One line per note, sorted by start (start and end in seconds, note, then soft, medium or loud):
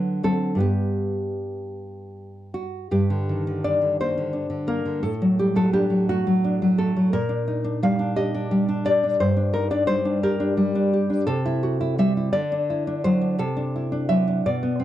0.00 0.57 D3 soft
0.00 0.22 F#3 soft
0.00 0.20 B4 medium
0.23 0.57 F#3 soft
0.23 0.56 C4 soft
0.23 0.59 A4 medium
0.55 2.86 G2 soft
0.55 2.87 G3 soft
0.55 2.87 B3 soft
0.60 2.51 G4 medium
2.54 2.91 F#4 soft
2.91 5.00 G2 soft
2.91 3.62 G4 soft
3.10 3.46 D3 soft
3.29 4.35 D#3 soft
3.47 3.80 D3 soft
3.64 4.32 D4 soft
3.64 3.98 D5 medium
3.82 4.00 D3 soft
4.00 4.17 A#3 soft
4.00 4.67 C5 medium
4.18 4.49 D3 soft
4.33 5.02 D4 soft
4.50 4.84 D3 soft
4.68 5.02 A#3 soft
4.68 5.02 A#4 medium
4.85 5.04 D3 soft
5.03 7.08 A2 soft
5.03 5.37 A4 medium
5.22 5.54 F#3 soft
5.39 6.09 G3 soft
5.39 5.57 G4 medium
5.56 5.89 F#3 soft
5.56 5.73 A4 medium
5.73 6.43 D4 soft
5.73 6.08 G4 medium
5.90 6.26 F#3 soft
6.09 6.77 A3 soft
6.09 6.76 F#4 medium
6.27 6.61 F#3 soft
6.44 7.13 D4 soft
6.62 6.95 F#3 soft
6.78 7.13 A3 soft
6.78 7.12 A4 medium
6.97 7.14 F#3 soft
7.13 9.17 A#2 medium
7.13 7.80 A#4 medium
7.29 7.63 D4 soft
7.48 8.52 D#4 soft
7.64 7.98 D4 soft
7.83 8.50 G3 soft
7.83 8.16 F5 medium
7.99 8.33 D4 soft
8.16 8.84 G4 soft
8.16 8.83 D#5 medium
8.34 8.67 D4 soft
8.51 9.20 G3 soft
8.69 9.02 D4 soft
8.85 9.20 G4 soft
8.85 9.19 D5 medium
9.04 9.21 D4 soft
9.20 11.24 G2 medium
9.20 9.53 C5 medium
9.37 9.70 D4 soft
9.53 10.23 D#4 soft
9.53 9.71 A#4 medium
9.71 10.04 D4 soft
9.71 9.87 D5 medium
9.87 10.56 G3 soft
9.87 10.21 C5 medium
10.05 10.39 D4 soft
10.23 10.92 G4 soft
10.23 10.90 A#4 medium
10.40 10.74 D4 soft
10.57 11.28 G3 soft
10.75 11.09 D4 soft
10.94 11.26 G4 soft
11.10 11.28 D4 soft
11.27 12.30 C3 medium
11.27 11.95 A4 medium
11.46 11.79 E4 soft
11.63 12.33 F#4 soft
11.81 11.99 E4 soft
11.98 12.34 G3 soft
11.98 12.17 E5 medium
12.17 12.32 E4 soft
12.33 13.35 D3 medium
12.33 13.00 D5 medium
12.52 12.86 D4 medium
12.70 13.39 E4 soft
12.87 13.20 D4 soft
13.04 13.39 F#3 soft
13.04 13.37 C5 medium
13.21 13.39 D4 soft
13.39 14.42 C3 medium
13.39 14.07 A4 medium
13.57 13.91 D4 soft
13.76 14.46 E4 soft
13.92 14.26 D4 soft
14.09 14.45 F#3 soft
14.09 14.43 E5 medium
14.28 14.45 D4 soft
14.46 14.84 B2 medium
14.46 14.84 D5 medium
14.63 14.84 B3 soft
14.80 14.84 C4 soft